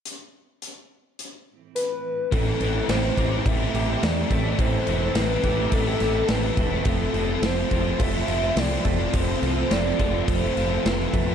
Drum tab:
CC |----------------|x-x-x-x-x-x-x-x-|x-x-x-x-x-x-x-x-|x-x-x-x-x-x-x-x-|
HH |x---x---x---x---|----------------|----------------|----------------|
SD |----------------|----o-------o---|----o-----o-o---|----o-------o---|
BD |----------------|o-----o-o-----o-|o-----o-o-----o-|o-----o-o-----o-|

CC |x-x-x-x-x-x-x-x-|
HH |----------------|
SD |----o-----o-oo--|
BD |o-----o-o-----o-|